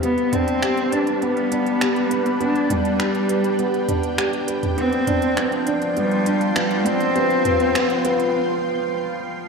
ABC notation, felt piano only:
X:1
M:4/4
L:1/8
Q:1/4=101
K:Gphr
V:1 name="Felt piano"
=B, D G =B B, D G B | =B, D G =B B, D G B | =B, D B, D B, D B, D | =B, B, B, B, z4 |]